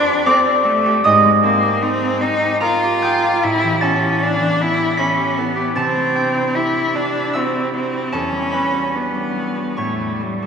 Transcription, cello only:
0, 0, Header, 1, 2, 480
1, 0, Start_track
1, 0, Tempo, 781250
1, 634, Time_signature, 3, 2, 24, 8
1, 1114, Tempo, 808625
1, 2074, Tempo, 774194
1, 3514, Tempo, 790514
1, 4954, Tempo, 806452
1, 5434, Tempo, 852273
1, 6298, End_track
2, 0, Start_track
2, 0, Title_t, "Cello"
2, 0, Program_c, 0, 42
2, 0, Note_on_c, 0, 62, 107
2, 161, Note_on_c, 0, 60, 72
2, 170, Note_off_c, 0, 62, 0
2, 398, Note_on_c, 0, 57, 76
2, 407, Note_off_c, 0, 60, 0
2, 634, Note_off_c, 0, 57, 0
2, 638, Note_on_c, 0, 56, 87
2, 872, Note_off_c, 0, 56, 0
2, 882, Note_on_c, 0, 58, 72
2, 1119, Note_on_c, 0, 60, 77
2, 1128, Note_off_c, 0, 58, 0
2, 1349, Note_on_c, 0, 63, 86
2, 1358, Note_off_c, 0, 60, 0
2, 1593, Note_off_c, 0, 63, 0
2, 1597, Note_on_c, 0, 65, 77
2, 2076, Note_on_c, 0, 64, 88
2, 2086, Note_off_c, 0, 65, 0
2, 2319, Note_on_c, 0, 61, 69
2, 2328, Note_off_c, 0, 64, 0
2, 2564, Note_on_c, 0, 62, 72
2, 2573, Note_off_c, 0, 61, 0
2, 2808, Note_on_c, 0, 64, 81
2, 2818, Note_off_c, 0, 62, 0
2, 3039, Note_on_c, 0, 61, 68
2, 3048, Note_off_c, 0, 64, 0
2, 3285, Note_on_c, 0, 59, 62
2, 3294, Note_off_c, 0, 61, 0
2, 3520, Note_off_c, 0, 59, 0
2, 3522, Note_on_c, 0, 60, 75
2, 3996, Note_on_c, 0, 64, 73
2, 4005, Note_off_c, 0, 60, 0
2, 4244, Note_on_c, 0, 62, 70
2, 4254, Note_off_c, 0, 64, 0
2, 4486, Note_on_c, 0, 60, 59
2, 4495, Note_off_c, 0, 62, 0
2, 4719, Note_off_c, 0, 60, 0
2, 4722, Note_on_c, 0, 60, 57
2, 4955, Note_on_c, 0, 61, 68
2, 4964, Note_off_c, 0, 60, 0
2, 5446, Note_on_c, 0, 59, 54
2, 5455, Note_off_c, 0, 61, 0
2, 5912, Note_on_c, 0, 57, 47
2, 5920, Note_off_c, 0, 59, 0
2, 6154, Note_on_c, 0, 55, 49
2, 6162, Note_off_c, 0, 57, 0
2, 6298, Note_off_c, 0, 55, 0
2, 6298, End_track
0, 0, End_of_file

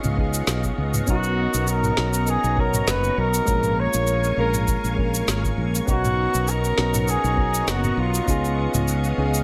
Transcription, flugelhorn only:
0, 0, Header, 1, 2, 480
1, 0, Start_track
1, 0, Tempo, 600000
1, 862, Time_signature, 4, 2, 24, 8
1, 7548, End_track
2, 0, Start_track
2, 0, Title_t, "Flugelhorn"
2, 0, Program_c, 0, 56
2, 872, Note_on_c, 0, 66, 104
2, 1315, Note_off_c, 0, 66, 0
2, 1355, Note_on_c, 0, 70, 99
2, 1836, Note_on_c, 0, 68, 100
2, 1848, Note_off_c, 0, 70, 0
2, 2077, Note_on_c, 0, 70, 98
2, 2089, Note_off_c, 0, 68, 0
2, 2315, Note_on_c, 0, 71, 108
2, 2327, Note_off_c, 0, 70, 0
2, 2552, Note_on_c, 0, 70, 104
2, 2564, Note_off_c, 0, 71, 0
2, 3038, Note_on_c, 0, 73, 121
2, 3050, Note_off_c, 0, 70, 0
2, 3510, Note_off_c, 0, 73, 0
2, 3515, Note_on_c, 0, 70, 104
2, 3957, Note_off_c, 0, 70, 0
2, 4709, Note_on_c, 0, 66, 107
2, 5195, Note_on_c, 0, 70, 111
2, 5207, Note_off_c, 0, 66, 0
2, 5679, Note_on_c, 0, 68, 104
2, 5691, Note_off_c, 0, 70, 0
2, 6156, Note_on_c, 0, 66, 96
2, 6168, Note_off_c, 0, 68, 0
2, 6398, Note_on_c, 0, 65, 92
2, 6410, Note_off_c, 0, 66, 0
2, 7110, Note_off_c, 0, 65, 0
2, 7548, End_track
0, 0, End_of_file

